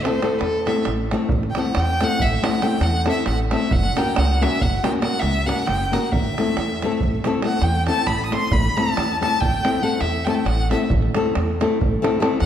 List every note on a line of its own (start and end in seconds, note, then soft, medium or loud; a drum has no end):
0.03 0.20 A3 medium
0.03 0.20 C4 medium
0.03 0.21 E4 medium
0.03 0.21 A4 medium
0.03 0.40 C5 medium
0.03 davul high medium
0.22 0.38 A3 medium
0.22 0.39 C4 medium
0.22 0.39 E4 medium
0.22 0.39 A4 medium
0.22 davul high medium
0.38 0.68 E2 medium
0.38 0.68 A4 medium
0.38 0.42 B4 soft
0.38 davul high medium
0.66 0.83 A3 medium
0.66 0.83 C4 medium
0.66 0.84 E4 medium
0.66 0.84 A4 medium
0.66 0.86 E5 medium
0.66 davul high medium
0.76 davul high soft
0.85 1.14 A1 medium
0.85 davul high medium
1.11 1.28 A3 medium
1.11 1.29 C4 medium
1.11 1.29 E4 medium
1.11 1.29 A4 medium
1.11 davul high medium
1.29 1.47 A1 medium
1.29 davul low medium
1.43 davul high soft
1.50 1.61 G5 medium
1.55 1.73 A3 medium
1.55 1.74 C4 medium
1.55 1.74 E4 medium
1.55 1.74 A4 medium
1.55 davul high medium
1.59 1.81 F#5 medium
1.65 davul high soft
1.75 2.04 E2 medium
1.75 davul high medium
1.80 2.06 G5 loud
2.01 2.18 A3 medium
2.01 2.19 C4 medium
2.01 2.19 E4 medium
2.01 2.19 A4 medium
2.01 2.24 F#5 loud
2.01 davul high medium
2.20 2.35 A1 medium
2.20 2.46 E5 medium
2.20 davul low medium
2.42 2.59 A3 medium
2.42 2.59 C4 medium
2.42 2.59 E4 medium
2.42 2.60 A4 medium
2.42 2.64 F#5 medium
2.42 davul high medium
2.62 2.78 A3 medium
2.62 2.79 C4 medium
2.62 2.79 E4 medium
2.62 2.79 A4 medium
2.62 2.84 G5 medium
2.62 davul high medium
2.81 3.08 E2 medium
2.81 3.08 F#5 medium
2.81 davul high medium
3.05 3.23 A3 medium
3.05 3.23 C4 medium
3.05 3.23 E4 medium
3.05 3.23 A4 medium
3.05 davul high medium
3.10 3.26 E5 medium
3.26 3.54 A1 medium
3.26 3.38 F#5 medium
3.26 davul high medium
3.51 3.68 A3 medium
3.51 3.69 C4 medium
3.51 3.69 E4 medium
3.51 3.69 A4 medium
3.51 3.74 E5 medium
3.51 davul high medium
3.71 3.88 F#1 medium
3.71 3.99 F#5 loud
3.71 davul low medium
3.83 davul high soft
3.96 4.13 A#3 medium
3.96 4.13 C#4 medium
3.96 4.14 F#4 medium
3.96 4.14 A#4 medium
3.96 4.20 G5 loud
3.96 davul high medium
4.07 davul high soft
4.16 4.44 C#2 medium
4.16 4.44 F#5 medium
4.16 davul high medium
4.41 4.58 A#3 medium
4.41 4.58 C#4 medium
4.41 4.59 F#4 medium
4.41 4.59 A#4 medium
4.41 4.64 E5 loud
4.41 davul high medium
4.61 4.76 F#1 medium
4.61 4.83 F#5 medium
4.61 davul low medium
4.83 5.00 A#3 medium
4.83 5.00 C#4 medium
4.83 5.00 F#4 medium
4.83 5.00 A#4 medium
4.83 4.92 G5 medium
4.83 davul high medium
5.02 5.18 A#3 medium
5.02 5.18 C#4 medium
5.02 5.18 F#4 medium
5.02 5.19 A#4 medium
5.02 5.21 F#5 medium
5.02 davul high medium
5.20 5.49 C#2 medium
5.20 5.48 E5 loud
5.20 davul high medium
5.46 5.63 A#3 medium
5.46 5.63 C#4 medium
5.46 5.63 F#4 medium
5.46 5.64 A#4 medium
5.46 5.68 F#5 medium
5.46 davul high medium
5.58 davul high soft
5.67 5.95 F#1 medium
5.67 5.94 G5 loud
5.67 davul high medium
5.92 6.09 A#3 medium
5.92 6.09 C#4 medium
5.92 6.09 F#4 medium
5.92 6.10 A#4 medium
5.92 6.06 F#5 medium
5.92 davul high medium
6.06 6.14 F#5 soft
6.12 6.28 A1 medium
6.12 7.25 E5 medium
6.12 davul low medium
6.25 davul high soft
6.38 6.54 A3 medium
6.38 6.55 C4 medium
6.38 6.55 E4 medium
6.38 6.55 A4 medium
6.38 davul high medium
6.57 6.84 E2 medium
6.57 davul high medium
6.69 davul high soft
6.82 6.99 A3 medium
6.82 7.00 C4 medium
6.82 7.00 E4 medium
6.82 7.00 A4 medium
6.82 davul high medium
6.92 davul high soft
7.00 7.16 A1 medium
7.00 davul low medium
7.24 7.40 A3 medium
7.24 7.41 C4 medium
7.24 7.41 E4 medium
7.24 7.42 A4 medium
7.24 davul high medium
7.42 7.59 A3 medium
7.42 7.59 C4 medium
7.42 7.60 E4 medium
7.42 7.60 A4 medium
7.42 7.65 F#5 medium
7.42 davul high medium
7.52 davul high soft
7.62 7.89 E2 medium
7.62 7.87 G5 loud
7.62 davul high medium
7.87 8.04 A3 medium
7.87 8.04 C4 medium
7.87 8.04 E4 medium
7.87 8.04 A4 medium
7.87 8.08 A5 medium
7.87 davul high medium
7.97 davul high soft
8.07 8.34 A1 medium
8.07 8.25 B5 loud
8.07 davul high medium
8.07 davul low medium
8.19 davul high soft
8.26 8.35 D#6 medium
8.31 8.48 A3 medium
8.31 8.49 C4 medium
8.31 8.49 E4 medium
8.31 8.49 A4 medium
8.31 8.54 C6 loud
8.31 davul high medium
8.41 davul high soft
8.51 8.67 A1 loud
8.51 8.78 B5 loud
8.51 davul low medium
8.65 davul high soft
8.76 8.93 A3 medium
8.76 8.94 C4 medium
8.76 8.94 E4 medium
8.76 8.94 A4 medium
8.76 9.20 A5 loud
8.76 davul high medium
8.87 davul high soft
8.97 9.24 E2 medium
8.97 davul high medium
9.21 9.38 A3 medium
9.21 9.38 C4 medium
9.21 9.39 E4 medium
9.21 9.39 A4 medium
9.21 9.42 A5 loud
9.21 davul high medium
9.41 9.55 A1 medium
9.41 9.84 G5 loud
9.41 davul low medium
9.64 9.80 A3 medium
9.64 9.80 C4 medium
9.64 9.80 E4 medium
9.64 9.81 A4 medium
9.64 davul high medium
9.82 9.98 A3 medium
9.82 9.98 C4 medium
9.82 9.99 E4 medium
9.82 9.99 A4 medium
9.82 10.02 F#5 medium
10.01 10.28 E2 medium
10.01 10.27 E5 medium
10.01 davul high medium
10.25 10.43 A3 medium
10.25 10.43 C4 medium
10.25 10.44 E4 medium
10.25 10.44 A4 medium
10.25 10.31 G5 medium
10.25 davul high medium
10.30 10.36 A5 medium
10.35 10.47 G5 medium
10.35 davul high soft
10.45 10.73 A1 medium
10.45 10.71 F#5 medium
10.45 davul high medium
10.71 10.88 A3 medium
10.71 10.88 C4 medium
10.71 10.88 E4 medium
10.71 10.88 A4 medium
10.71 10.89 E5 medium
10.71 davul high medium
10.90 11.07 A1 loud
10.90 davul low medium
11.02 davul high soft
11.14 11.32 A3 medium
11.14 11.33 C4 medium
11.14 11.33 E4 medium
11.14 11.33 A4 medium
11.14 davul high medium
11.26 davul high soft
11.35 11.63 E2 medium
11.35 davul high medium
11.61 11.78 A3 medium
11.61 11.78 C4 medium
11.61 11.78 E4 medium
11.61 11.78 A4 medium
11.61 davul high medium
11.81 11.95 A1 medium
11.81 davul low medium
12.02 12.19 A3 medium
12.02 12.19 C4 medium
12.02 12.19 E4 medium
12.02 12.20 A4 medium
12.02 davul high medium
12.20 12.37 A3 medium
12.20 12.37 C4 medium
12.20 12.37 E4 medium
12.20 12.38 A4 medium
12.20 davul high medium
12.40 12.46 E2 medium
12.40 12.46 F#5 medium
12.40 davul high medium